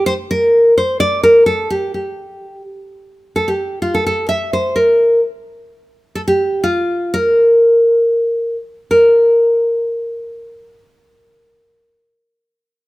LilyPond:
\new Staff \with { instrumentName = "Nylon-string guitar" } { \time 3/4 \key bes \major \tempo 4 = 126 c''8 bes'4 c''8 d''8 bes'8 | a'8 g'8 g'4. r8 | r4 a'16 g'8. f'16 a'16 a'8 | e''8 c''8 bes'4 r4 |
r4 a'16 g'8. f'4 | bes'2~ bes'8 r8 | bes'2.~ | bes'2. | }